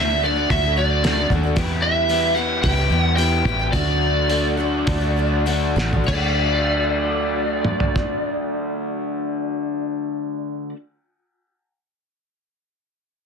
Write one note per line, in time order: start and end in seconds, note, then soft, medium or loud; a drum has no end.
0.00 0.46 D2 medium
0.00 0.22 D3 medium
0.00 0.21 F#3 medium
0.00 0.23 A3 medium
0.00 0.23 D4 medium
0.00 0.23 F#4 medium
0.00 0.24 E5 medium
0.22 0.36 F#3 soft
0.22 0.37 A3 medium
0.22 0.36 D4 medium
0.22 0.35 F#4 medium
0.22 0.51 D5 medium
0.36 0.64 A3 soft
0.36 0.63 D4 soft
0.36 0.62 F#4 soft
0.50 1.26 D2 medium
0.50 1.02 D3 medium
0.50 1.02 A3 medium
0.50 1.03 D4 medium
0.50 1.04 F#4 medium
0.50 0.77 E5 medium
0.50 kick loud
0.50 open hi-hat soft
0.63 0.76 A3 soft
0.63 0.77 D4 soft
0.63 0.76 F#4 soft
0.76 1.03 F#3 medium
0.76 1.03 A3 medium
0.76 1.04 D4 medium
0.76 1.04 F#4 medium
0.76 1.26 D5 medium
1.04 1.30 D3 medium
1.04 1.29 F#3 medium
1.04 1.30 A3 medium
1.04 1.30 D4 medium
1.04 1.31 F#4 medium
1.04 snare medium
1.04 open hi-hat soft
1.30 1.57 D#2 medium
1.30 1.43 F#3 medium
1.30 1.44 A3 medium
1.30 1.44 D4 medium
1.30 1.42 F#4 medium
1.30 kick medium
1.43 1.57 A3 soft
1.43 1.57 D4 soft
1.43 1.56 F#4 medium
1.56 2.36 E2 medium
1.56 2.59 E2 medium
1.56 2.36 B2 medium
1.56 2.07 E3 medium
1.56 2.09 G3 medium
1.56 2.08 B3 medium
1.56 2.09 E4 medium
1.56 2.10 G4 medium
1.56 kick loud
1.56 open hi-hat soft
1.82 2.37 E5 medium
2.09 2.34 E3 medium
2.09 2.37 G3 medium
2.09 2.35 B3 medium
2.09 2.36 E4 medium
2.09 2.37 G4 medium
2.09 open hi-hat soft
2.35 2.76 E3 medium
2.35 2.63 G3 medium
2.35 2.77 B3 medium
2.35 2.77 E4 medium
2.35 2.76 G4 medium
2.35 2.62 F#5 medium
2.62 2.89 C#2 medium
2.62 3.17 E3 medium
2.62 3.18 G3 medium
2.62 3.18 B3 medium
2.62 3.18 G4 medium
2.62 3.03 G5 loud
2.62 kick loud
2.62 open hi-hat soft
2.77 2.90 B3 soft
2.77 2.91 E4 soft
2.77 2.90 G4 soft
2.90 3.42 E2 medium
2.90 3.16 E3 soft
2.90 3.17 B3 medium
2.90 3.18 E4 medium
2.90 3.19 G4 medium
3.03 3.15 F#5 loud
3.16 3.71 E2 medium
3.16 3.71 B2 medium
3.16 3.45 E3 medium
3.16 3.45 G3 medium
3.16 3.45 B3 medium
3.16 3.46 E4 medium
3.16 3.46 G4 medium
3.16 3.68 G5 medium
3.16 open hi-hat soft
3.44 3.71 A1 medium
3.44 3.59 E3 medium
3.44 3.71 G3 medium
3.44 3.60 B3 medium
3.44 3.71 G4 medium
3.44 kick medium
3.49 3.60 E4 medium
3.49 3.58 G4 medium
3.59 3.74 B3 soft
3.59 3.74 E4 soft
3.59 3.73 G4 soft
3.72 4.83 D2 medium
3.72 4.29 D3 medium
3.72 4.29 F#3 medium
3.72 4.30 A3 medium
3.72 4.31 D4 medium
3.72 4.31 F#4 medium
3.72 5.42 D5 medium
3.72 kick loud
3.72 open hi-hat soft
4.29 4.58 D3 medium
4.29 4.56 F#3 medium
4.29 4.57 A3 medium
4.29 4.58 D4 medium
4.29 4.59 F#4 medium
4.29 open hi-hat soft
4.57 5.01 F#3 medium
4.57 5.02 A3 medium
4.57 5.02 D4 medium
4.57 5.00 F#4 medium
4.87 5.73 D2 medium
4.87 5.45 D3 medium
4.87 5.46 A3 medium
4.87 5.47 D4 medium
4.87 5.48 F#4 medium
4.87 kick loud
4.87 open hi-hat soft
5.01 5.16 A3 soft
5.01 5.17 D4 soft
5.01 5.16 F#4 soft
5.17 5.45 F#3 medium
5.17 5.45 A3 medium
5.17 5.46 D4 medium
5.17 5.47 F#4 medium
5.46 5.77 D3 medium
5.46 5.75 F#3 medium
5.46 5.76 A3 medium
5.46 5.77 D4 medium
5.46 5.78 F#4 medium
5.46 open hi-hat soft
5.76 6.06 A1 medium
5.76 5.92 F#3 medium
5.76 5.92 A3 medium
5.76 5.92 D4 medium
5.76 5.90 F#4 medium
5.76 snare soft
5.91 6.09 A3 soft
5.91 6.08 D4 soft
5.91 6.07 F#4 medium
5.91 floor tom medium
6.04 10.69 D2 medium
6.04 10.69 D3 medium
6.04 10.72 F#3 medium
6.04 10.69 D5 medium
6.08 10.75 A3 medium
6.08 10.77 D4 medium
6.08 kick medium
6.08 crash medium
6.14 10.79 F#4 medium
7.65 mid tom soft
7.80 floor tom medium
7.96 kick medium